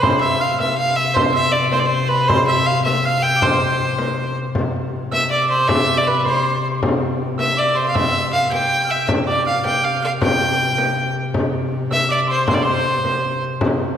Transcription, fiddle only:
0.02 0.20 C5 medium
0.20 0.43 E5 medium
0.41 0.59 F5 medium
0.60 0.77 E5 medium
0.77 0.97 F5 medium
0.96 1.15 E5 medium
1.14 1.34 C5 medium
1.34 1.53 E5 loud
1.52 1.70 D5 medium
1.71 1.81 C5 medium
1.79 1.87 D5 medium
1.86 2.10 C5 medium
2.08 2.29 B4 medium
2.28 2.46 C5 loud
2.47 2.68 E5 medium
2.66 2.84 F5 loud
2.84 3.06 E5 medium
3.05 3.24 F5 loud
3.22 3.43 G5 loud
3.42 4.36 C5 medium
5.12 5.30 E5 medium
5.30 5.48 D5 medium
5.49 5.69 C5 medium
5.68 5.99 E5 loud
5.97 6.08 D5 medium
6.07 6.25 B4 medium
6.25 6.65 C5 medium
7.40 7.60 E5 medium
7.59 7.78 D5 medium
7.77 7.87 C5 medium
7.88 7.97 F5 medium
7.95 8.32 E5 loud
8.33 8.50 F5 medium
8.53 8.92 G5 medium
8.90 9.09 E5 medium
9.27 9.45 D5 medium
9.47 9.64 F5 medium
9.65 9.86 G5 medium
9.84 10.03 F5 medium
10.04 10.12 F5 medium
10.21 11.12 G5 loud
11.92 12.09 E5 loud
12.11 12.20 D5 medium
12.31 12.47 C5 medium
12.49 12.56 C5 medium
12.54 12.64 D5 medium
12.62 13.42 C5 medium

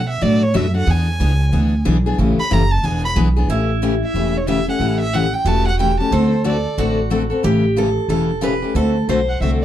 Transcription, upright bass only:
0.00 0.21 B2 medium
0.22 0.54 A2 medium
0.54 0.86 F#2 medium
0.87 1.19 E2 loud
1.20 1.52 C#2 medium
1.52 1.84 D2 medium
1.86 2.18 B1 medium
2.18 2.37 A1 loud
2.38 muted upright bass stroke soft
2.51 2.83 F#1 medium
2.83 3.15 E1 medium
3.16 3.48 B1 loud
3.48 4.01 A1 medium
4.14 4.67 E1 medium
4.80 5.33 A1 medium
5.45 5.98 E1 medium
6.11 6.64 D2 medium
6.78 7.30 A1 medium
7.44 7.96 A1 medium
8.08 8.61 E1 medium
8.74 9.01 D2 medium
9.08 9.36 B1 medium
9.40 9.65 C2 medium

